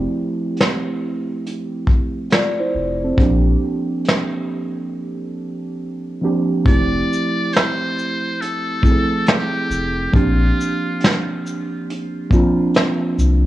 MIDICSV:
0, 0, Header, 1, 5, 480
1, 0, Start_track
1, 0, Key_signature, -1, "major"
1, 0, Tempo, 869565
1, 1755, Time_signature, 4, 2, 24, 8
1, 7432, End_track
2, 0, Start_track
2, 0, Title_t, "Muted trumpet"
2, 0, Program_c, 0, 59
2, 3685, Note_on_c, 0, 74, 113
2, 4162, Note_on_c, 0, 72, 112
2, 4170, Note_off_c, 0, 74, 0
2, 4643, Note_on_c, 0, 69, 101
2, 4651, Note_off_c, 0, 72, 0
2, 5126, Note_on_c, 0, 67, 98
2, 5134, Note_off_c, 0, 69, 0
2, 5600, Note_off_c, 0, 67, 0
2, 5606, Note_on_c, 0, 65, 88
2, 6298, Note_off_c, 0, 65, 0
2, 7432, End_track
3, 0, Start_track
3, 0, Title_t, "Synth keys"
3, 0, Program_c, 1, 88
3, 0, Control_c, 1, 64, 127
3, 0, Note_on_c, 1, 53, 73
3, 0, Note_on_c, 1, 57, 72
3, 0, Note_on_c, 1, 60, 75
3, 0, Note_on_c, 1, 64, 67
3, 0, Note_on_c, 1, 67, 81
3, 559, Note_off_c, 1, 53, 0
3, 561, Note_off_c, 1, 57, 0
3, 564, Note_off_c, 1, 60, 0
3, 565, Note_off_c, 1, 64, 0
3, 586, Note_off_c, 1, 67, 0
3, 1279, Note_on_c, 1, 74, 65
3, 1283, Note_on_c, 1, 65, 50
3, 1424, Note_off_c, 1, 74, 0
3, 1426, Note_off_c, 1, 65, 0
3, 1434, Note_on_c, 1, 72, 66
3, 1436, Note_on_c, 1, 64, 54
3, 1660, Note_off_c, 1, 72, 0
3, 1661, Note_off_c, 1, 64, 0
3, 1677, Note_on_c, 1, 69, 55
3, 1680, Note_on_c, 1, 60, 51
3, 1748, Note_on_c, 1, 53, 76
3, 1752, Note_off_c, 1, 60, 0
3, 1754, Note_on_c, 1, 58, 74
3, 1759, Note_on_c, 1, 60, 71
3, 1762, Control_c, 1, 64, 0
3, 1762, Note_on_c, 1, 62, 70
3, 1768, Note_on_c, 1, 67, 83
3, 1844, Control_c, 1, 64, 127
3, 1902, Note_off_c, 1, 69, 0
3, 2478, Note_off_c, 1, 53, 0
3, 2481, Note_off_c, 1, 58, 0
3, 2484, Note_off_c, 1, 60, 0
3, 2485, Note_off_c, 1, 62, 0
3, 2488, Note_off_c, 1, 67, 0
3, 3431, Note_on_c, 1, 53, 79
3, 3435, Note_on_c, 1, 58, 71
3, 3440, Note_on_c, 1, 60, 72
3, 3444, Note_on_c, 1, 62, 73
3, 3448, Note_on_c, 1, 67, 86
3, 3631, Note_off_c, 1, 53, 0
3, 3633, Note_off_c, 1, 58, 0
3, 3636, Note_off_c, 1, 60, 0
3, 3638, Note_off_c, 1, 62, 0
3, 3640, Note_off_c, 1, 67, 0
3, 3668, Note_on_c, 1, 53, 70
3, 3673, Note_on_c, 1, 57, 68
3, 3679, Note_on_c, 1, 60, 70
3, 3681, Note_on_c, 1, 64, 70
3, 3682, Control_c, 1, 64, 0
3, 3687, Note_on_c, 1, 67, 82
3, 3784, Control_c, 1, 64, 127
3, 4399, Note_off_c, 1, 53, 0
3, 4401, Note_off_c, 1, 57, 0
3, 4404, Note_off_c, 1, 60, 0
3, 4405, Note_off_c, 1, 64, 0
3, 4408, Note_off_c, 1, 67, 0
3, 4868, Note_on_c, 1, 53, 77
3, 4872, Note_on_c, 1, 57, 68
3, 4877, Note_on_c, 1, 60, 68
3, 4882, Note_on_c, 1, 64, 71
3, 4886, Note_on_c, 1, 68, 70
3, 4922, Note_on_c, 1, 69, 82
3, 4927, Note_off_c, 1, 68, 0
3, 5434, Note_off_c, 1, 53, 0
3, 5436, Note_off_c, 1, 57, 0
3, 5439, Note_off_c, 1, 60, 0
3, 5441, Note_off_c, 1, 64, 0
3, 5461, Note_off_c, 1, 69, 0
3, 5586, Note_on_c, 1, 53, 77
3, 5591, Note_on_c, 1, 58, 69
3, 5595, Note_on_c, 1, 60, 65
3, 5601, Note_on_c, 1, 62, 70
3, 5603, Control_c, 1, 64, 0
3, 5606, Note_on_c, 1, 67, 87
3, 5699, Control_c, 1, 64, 127
3, 6317, Note_off_c, 1, 53, 0
3, 6320, Note_off_c, 1, 58, 0
3, 6322, Note_off_c, 1, 60, 0
3, 6325, Note_off_c, 1, 62, 0
3, 6327, Note_off_c, 1, 67, 0
3, 6789, Note_on_c, 1, 53, 94
3, 6796, Note_on_c, 1, 58, 92
3, 6798, Note_on_c, 1, 60, 91
3, 6803, Note_on_c, 1, 62, 84
3, 6809, Note_on_c, 1, 65, 103
3, 7354, Note_off_c, 1, 53, 0
3, 7358, Note_off_c, 1, 58, 0
3, 7359, Note_off_c, 1, 60, 0
3, 7362, Note_off_c, 1, 62, 0
3, 7365, Note_off_c, 1, 65, 0
3, 7432, End_track
4, 0, Start_track
4, 0, Title_t, "Sub bass"
4, 0, Program_c, 2, 38
4, 1516, Note_on_c, 2, 29, 78
4, 1719, Note_off_c, 2, 29, 0
4, 1756, Note_on_c, 2, 34, 101
4, 1959, Note_off_c, 2, 34, 0
4, 3675, Note_on_c, 2, 29, 112
4, 3879, Note_off_c, 2, 29, 0
4, 5354, Note_on_c, 2, 29, 84
4, 5558, Note_off_c, 2, 29, 0
4, 5596, Note_on_c, 2, 34, 107
4, 5799, Note_off_c, 2, 34, 0
4, 7275, Note_on_c, 2, 36, 85
4, 7432, Note_off_c, 2, 36, 0
4, 7432, End_track
5, 0, Start_track
5, 0, Title_t, "Drums"
5, 314, Note_on_c, 9, 42, 54
5, 334, Note_on_c, 9, 38, 100
5, 369, Note_off_c, 9, 42, 0
5, 390, Note_off_c, 9, 38, 0
5, 809, Note_on_c, 9, 42, 75
5, 864, Note_off_c, 9, 42, 0
5, 1033, Note_on_c, 9, 36, 83
5, 1089, Note_off_c, 9, 36, 0
5, 1272, Note_on_c, 9, 42, 59
5, 1283, Note_on_c, 9, 38, 103
5, 1327, Note_off_c, 9, 42, 0
5, 1338, Note_off_c, 9, 38, 0
5, 1754, Note_on_c, 9, 36, 116
5, 1765, Note_on_c, 9, 42, 69
5, 1810, Note_off_c, 9, 36, 0
5, 1820, Note_off_c, 9, 42, 0
5, 2233, Note_on_c, 9, 42, 59
5, 2254, Note_on_c, 9, 38, 113
5, 2289, Note_off_c, 9, 42, 0
5, 2310, Note_off_c, 9, 38, 0
5, 3675, Note_on_c, 9, 36, 121
5, 3686, Note_on_c, 9, 42, 78
5, 3730, Note_off_c, 9, 36, 0
5, 3741, Note_off_c, 9, 42, 0
5, 3936, Note_on_c, 9, 82, 53
5, 3991, Note_off_c, 9, 82, 0
5, 4155, Note_on_c, 9, 42, 60
5, 4176, Note_on_c, 9, 38, 120
5, 4210, Note_off_c, 9, 42, 0
5, 4231, Note_off_c, 9, 38, 0
5, 4409, Note_on_c, 9, 82, 45
5, 4465, Note_off_c, 9, 82, 0
5, 4649, Note_on_c, 9, 42, 86
5, 4704, Note_off_c, 9, 42, 0
5, 4874, Note_on_c, 9, 36, 90
5, 4886, Note_on_c, 9, 82, 49
5, 4930, Note_off_c, 9, 36, 0
5, 4941, Note_off_c, 9, 82, 0
5, 5113, Note_on_c, 9, 42, 68
5, 5125, Note_on_c, 9, 38, 109
5, 5169, Note_off_c, 9, 42, 0
5, 5180, Note_off_c, 9, 38, 0
5, 5361, Note_on_c, 9, 82, 49
5, 5416, Note_off_c, 9, 82, 0
5, 5595, Note_on_c, 9, 36, 124
5, 5607, Note_on_c, 9, 42, 75
5, 5650, Note_off_c, 9, 36, 0
5, 5662, Note_off_c, 9, 42, 0
5, 5855, Note_on_c, 9, 82, 54
5, 5910, Note_off_c, 9, 82, 0
5, 6074, Note_on_c, 9, 42, 63
5, 6095, Note_on_c, 9, 38, 116
5, 6130, Note_off_c, 9, 42, 0
5, 6151, Note_off_c, 9, 38, 0
5, 6329, Note_on_c, 9, 82, 48
5, 6384, Note_off_c, 9, 82, 0
5, 6569, Note_on_c, 9, 42, 89
5, 6624, Note_off_c, 9, 42, 0
5, 6793, Note_on_c, 9, 36, 88
5, 6804, Note_on_c, 9, 82, 50
5, 6848, Note_off_c, 9, 36, 0
5, 6859, Note_off_c, 9, 82, 0
5, 7033, Note_on_c, 9, 42, 65
5, 7044, Note_on_c, 9, 38, 113
5, 7088, Note_off_c, 9, 42, 0
5, 7099, Note_off_c, 9, 38, 0
5, 7281, Note_on_c, 9, 82, 51
5, 7336, Note_off_c, 9, 82, 0
5, 7432, End_track
0, 0, End_of_file